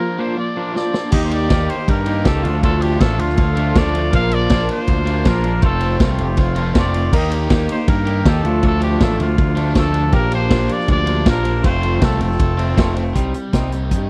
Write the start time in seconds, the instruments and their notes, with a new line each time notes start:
Already playing: overdriven electric guitar A#3, trumpet A#4
0.00 clean electric guitar F3 A#3, tine electric piano F4
0.19 clean electric guitar F3 A#3 D4, trumpet C5
0.36 clean electric guitar F3 A#3, overdriven electric guitar F4, trumpet D5
0.57 clean electric guitar F3 A#3 D4
0.72 clean electric guitar F3 A#3, tine electric piano F4, trumpet D5, snare
0.91 clean electric guitar F3 A#3, tine electric piano D4, snare
1.11 picked electric bass D#2, clean electric guitar D#3 A#3 D#4 G4, tine electric piano G4, trumpet D#5, kick, crash
1.25 trumpet C5
1.30 overdriven electric guitar D#3 A#3 D#4 G4, trumpet D5, ride
1.50 picked electric bass D#2, clean electric guitar D#3 A#3 D#4 G4, kick, snare, ride
1.70 trumpet C5, ride
1.88 picked electric bass G2, tine electric piano D#4, trumpet A#4, kick, ride
2.06 overdriven electric guitar D#3, clean electric guitar A#3 D#4 G4, ride
2.24 picked electric bass C#2, clean electric guitar D#3 A#3 D#4 G4, trumpet A4, kick, snare, ride
2.42 picked electric bass D2, clean electric guitar F3 A3 D4 F4, tine electric piano F4, ride
2.63 clean electric guitar F3 A3 D4 F4, trumpet A4, kick, ride
2.81 overdriven electric guitar F3 A3 D4, trumpet G4, ride
3.00 picked electric bass A1, clean electric guitar F3 A3 D4 F4, trumpet A4, kick, snare, ride
3.19 picked electric bass D2, trumpet F4, ride
3.29 snare
3.36 picked electric bass D2, tine electric piano A4, kick, ride
3.56 overdriven electric guitar F3, clean electric guitar A3 D4 F4, ride
3.75 picked electric bass D2, clean electric guitar F3 A3 D4 F4, trumpet D5, kick, snare, ride
3.95 clean electric guitar A3 D4 F4, ride
4.11 picked electric bass A#1, clean electric guitar F3 A#3 D4 F4, tine electric piano A#4, kick, ride
4.15 trumpet F5
4.29 overdriven electric guitar F3 A#3 D4, ride
4.34 trumpet D5
4.50 picked electric bass A#1, clean electric guitar F3 A#3 D4 F4, kick, snare, ride
4.69 trumpet C5, ride
4.87 picked electric bass D2, kick, ride
5.06 overdriven electric guitar F3, clean electric guitar A#3 D4 F4, ride
5.25 picked electric bass A#1, clean electric guitar F3 A#3 D4 F4, trumpet A#4, kick, snare, ride
5.44 clean electric guitar A#3 D4 F4, ride
5.62 picked electric bass F1, clean electric guitar A3 C4 F4, trumpet A4, tine electric piano C5, kick, ride
5.80 overdriven electric guitar F3 A3 C4, ride
5.99 picked electric bass C2, overdriven electric guitar F3, clean electric guitar A3 C4 F4, kick, snare, ride
6.18 picked electric bass F1, trumpet G4, ride
6.37 picked electric bass F1, trumpet F4, kick, ride
6.56 overdriven electric guitar F3 A3, clean electric guitar C4 F4, ride
6.73 picked electric bass F1, overdriven electric guitar F3, clean electric guitar A3 C4 F4, kick, snare, ride
6.79 trumpet D5
6.94 clean electric guitar C4 F4, ride
7.13 picked electric bass D#2, clean electric guitar D#3 A#3 D#4 G4, tine electric piano A#4, trumpet D#5, kick, crash
7.31 overdriven electric guitar D#3 A#3 D#4 G4, ride
7.50 picked electric bass D#2, clean electric guitar D#3 A#3 D#4 G4, kick, snare, ride
7.69 trumpet C5, ride
7.88 picked electric bass G2, trumpet A#4, kick, ride
8.07 overdriven electric guitar D#3, clean electric guitar A#3 D#4 G4, ride
8.25 picked electric bass D#2, clean electric guitar D#3 A#3 D#4 G4, trumpet A4, kick, snare, ride
8.44 picked electric bass D2, clean electric guitar F3 A3 D4, tine electric piano F4, ride
8.63 clean electric guitar F3 A3 D4, kick, ride
8.67 trumpet A4
8.81 overdriven electric guitar F3 A3 D4 F4, trumpet G4, ride
9.00 picked electric bass A1, clean electric guitar F3 A3 D4, overdriven electric guitar F4, trumpet A4, kick, snare, ride
9.20 picked electric bass D2, trumpet F4, ride
9.38 picked electric bass D2, kick, ride
9.56 overdriven electric guitar F3 F4, clean electric guitar A3 D4, ride
9.75 picked electric bass D2, clean electric guitar F3 A3 D4, overdriven electric guitar F4, trumpet A4, kick, snare, ride
9.93 clean electric guitar A3 D4, ride
10.12 picked electric bass A#1, clean electric guitar F3 A#3 D4, tine electric piano G4, trumpet A#4, kick, ride
10.31 overdriven electric guitar F3 A#3 D4 F4, trumpet C5, ride
10.49 picked electric bass A#1, clean electric guitar F3 A#3 D4, overdriven electric guitar F4, kick, snare, ride
10.69 trumpet D5, ride
10.80 snare
10.88 picked electric bass D2, trumpet D5, kick, ride
11.06 overdriven electric guitar F3 F4, clean electric guitar A#3 D4, ride
11.25 picked electric bass A#1, clean electric guitar F3 A#3 D4, overdriven electric guitar F4, kick, snare, ride
11.29 trumpet A#4
11.44 clean electric guitar A#3 D4, ride
11.63 picked electric bass F1, clean electric guitar F3 A3 C4, tine electric piano F4, trumpet C5, kick, ride
11.82 overdriven electric guitar A3 C4 F4, ride
12.00 picked electric bass C2, clean electric guitar F3 A3 C4, overdriven electric guitar F4, trumpet A4, kick, snare, ride
12.21 picked electric bass F1, trumpet A4, ride
12.31 snare
12.40 picked electric bass F1, kick, ride
12.58 clean electric guitar A3 C4, overdriven electric guitar F4, ride
12.76 picked electric bass F1, clean electric guitar F3 A3 C4, overdriven electric guitar F4, kick, snare, ride
12.96 clean electric guitar A3 C4, ride
13.15 picked electric bass C2, clean electric guitar G3 C4 D#4, kick, closed hi-hat
13.34 clean electric guitar G3 C4, closed hi-hat
13.53 picked electric bass C2, clean electric guitar G3 C4 D#4, kick, snare, closed hi-hat
13.72 clean electric guitar G3 C4, overdriven electric guitar G4, closed hi-hat
13.91 picked electric bass G2, clean electric guitar G3 C4, overdriven electric guitar D#4, kick, closed hi-hat